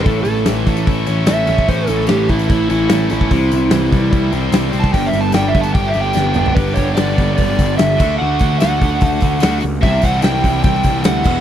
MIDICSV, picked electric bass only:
0, 0, Header, 1, 2, 480
1, 0, Start_track
1, 0, Tempo, 407056
1, 70, Time_signature, 4, 2, 24, 8
1, 13449, End_track
2, 0, Start_track
2, 0, Title_t, "Picked electric bass"
2, 0, Program_c, 0, 34
2, 70, Note_on_c, 0, 33, 82
2, 288, Note_off_c, 0, 33, 0
2, 295, Note_on_c, 0, 33, 89
2, 524, Note_off_c, 0, 33, 0
2, 550, Note_on_c, 0, 33, 73
2, 772, Note_off_c, 0, 33, 0
2, 793, Note_on_c, 0, 33, 93
2, 1013, Note_off_c, 0, 33, 0
2, 1032, Note_on_c, 0, 33, 79
2, 1253, Note_off_c, 0, 33, 0
2, 1277, Note_on_c, 0, 33, 84
2, 1495, Note_off_c, 0, 33, 0
2, 1516, Note_on_c, 0, 33, 85
2, 1734, Note_off_c, 0, 33, 0
2, 1747, Note_on_c, 0, 33, 94
2, 1970, Note_off_c, 0, 33, 0
2, 1992, Note_on_c, 0, 33, 87
2, 2212, Note_off_c, 0, 33, 0
2, 2226, Note_on_c, 0, 33, 93
2, 2449, Note_off_c, 0, 33, 0
2, 2473, Note_on_c, 0, 33, 81
2, 2693, Note_off_c, 0, 33, 0
2, 2710, Note_on_c, 0, 33, 80
2, 2931, Note_off_c, 0, 33, 0
2, 2946, Note_on_c, 0, 33, 88
2, 3168, Note_off_c, 0, 33, 0
2, 3181, Note_on_c, 0, 33, 84
2, 3406, Note_off_c, 0, 33, 0
2, 3423, Note_on_c, 0, 33, 80
2, 3647, Note_off_c, 0, 33, 0
2, 3672, Note_on_c, 0, 33, 87
2, 3891, Note_off_c, 0, 33, 0
2, 3901, Note_on_c, 0, 36, 95
2, 4125, Note_off_c, 0, 36, 0
2, 4154, Note_on_c, 0, 36, 88
2, 4372, Note_off_c, 0, 36, 0
2, 4383, Note_on_c, 0, 36, 81
2, 4606, Note_off_c, 0, 36, 0
2, 4625, Note_on_c, 0, 36, 89
2, 4847, Note_off_c, 0, 36, 0
2, 4865, Note_on_c, 0, 36, 94
2, 5087, Note_off_c, 0, 36, 0
2, 5097, Note_on_c, 0, 36, 97
2, 5317, Note_off_c, 0, 36, 0
2, 5324, Note_on_c, 0, 36, 86
2, 5556, Note_off_c, 0, 36, 0
2, 5583, Note_on_c, 0, 36, 89
2, 5806, Note_off_c, 0, 36, 0
2, 5831, Note_on_c, 0, 31, 99
2, 6047, Note_off_c, 0, 31, 0
2, 6054, Note_on_c, 0, 31, 94
2, 6281, Note_off_c, 0, 31, 0
2, 6294, Note_on_c, 0, 31, 79
2, 6521, Note_off_c, 0, 31, 0
2, 6541, Note_on_c, 0, 31, 86
2, 6765, Note_off_c, 0, 31, 0
2, 6777, Note_on_c, 0, 31, 90
2, 7003, Note_off_c, 0, 31, 0
2, 7017, Note_on_c, 0, 31, 92
2, 7242, Note_off_c, 0, 31, 0
2, 7256, Note_on_c, 0, 31, 92
2, 7482, Note_off_c, 0, 31, 0
2, 7491, Note_on_c, 0, 31, 93
2, 7719, Note_off_c, 0, 31, 0
2, 7740, Note_on_c, 0, 31, 90
2, 7947, Note_off_c, 0, 31, 0
2, 7980, Note_on_c, 0, 31, 93
2, 8187, Note_off_c, 0, 31, 0
2, 8231, Note_on_c, 0, 31, 89
2, 8434, Note_off_c, 0, 31, 0
2, 8467, Note_on_c, 0, 31, 78
2, 8671, Note_off_c, 0, 31, 0
2, 8711, Note_on_c, 0, 31, 92
2, 8914, Note_off_c, 0, 31, 0
2, 8950, Note_on_c, 0, 31, 86
2, 9153, Note_off_c, 0, 31, 0
2, 9198, Note_on_c, 0, 31, 94
2, 9398, Note_off_c, 0, 31, 0
2, 9431, Note_on_c, 0, 38, 86
2, 9634, Note_off_c, 0, 38, 0
2, 9686, Note_on_c, 0, 38, 88
2, 9882, Note_off_c, 0, 38, 0
2, 9918, Note_on_c, 0, 38, 93
2, 10118, Note_off_c, 0, 38, 0
2, 10170, Note_on_c, 0, 38, 78
2, 10365, Note_off_c, 0, 38, 0
2, 10397, Note_on_c, 0, 38, 89
2, 10597, Note_off_c, 0, 38, 0
2, 10635, Note_on_c, 0, 38, 93
2, 10836, Note_off_c, 0, 38, 0
2, 10869, Note_on_c, 0, 38, 83
2, 11073, Note_off_c, 0, 38, 0
2, 11124, Note_on_c, 0, 38, 96
2, 11322, Note_off_c, 0, 38, 0
2, 11366, Note_on_c, 0, 37, 93
2, 11563, Note_off_c, 0, 37, 0
2, 11594, Note_on_c, 0, 36, 105
2, 11796, Note_off_c, 0, 36, 0
2, 11831, Note_on_c, 0, 36, 92
2, 12035, Note_off_c, 0, 36, 0
2, 12074, Note_on_c, 0, 36, 80
2, 12277, Note_off_c, 0, 36, 0
2, 12312, Note_on_c, 0, 36, 88
2, 12515, Note_off_c, 0, 36, 0
2, 12551, Note_on_c, 0, 36, 94
2, 12755, Note_off_c, 0, 36, 0
2, 12795, Note_on_c, 0, 36, 88
2, 12997, Note_off_c, 0, 36, 0
2, 13026, Note_on_c, 0, 38, 83
2, 13232, Note_off_c, 0, 38, 0
2, 13269, Note_on_c, 0, 28, 82
2, 13449, Note_off_c, 0, 28, 0
2, 13449, End_track
0, 0, End_of_file